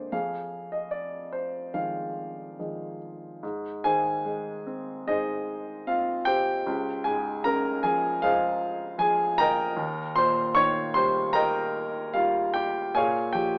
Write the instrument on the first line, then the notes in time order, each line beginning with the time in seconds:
grand piano
Already playing: D3 G#3 A#3 G#4 C5 D5
0.12 F2 G#4 F5
0.72 D#5
0.91 D5
1.33 C5
1.74 D#3 F3 G#3 G#4 F5
2.59 D#3 F3 G#3
3.43 G#2
3.84 D#3 G#4 C5 G#5
4.26 G#3
4.66 C4
5.07 G#3 D#4 G#4 C5 D#5
5.87 C4 F4 F5
6.25 G4 C5 G5
6.66 C#2
7.04 G#2 G#4 G#5
7.44 C#3 A#4 A#5
7.83 F3 G#4 G#5
8.22 G#3 F4 G#4 C5 F5
8.98 F3 G#4 G#5
9.38 A#4 D#5 G5 A#5
9.77 D#2
10.16 A#2 C5 C6
10.55 D#3 C#5 C#6
10.94 G3 C5 C6
11.33 A#3 A#4 D#5 G5 A#5
12.14 G3 F4 F5
12.54 G4 G5
12.94 A#2 G#4 C#5 F5 G#5
13.33 F3 G4 G5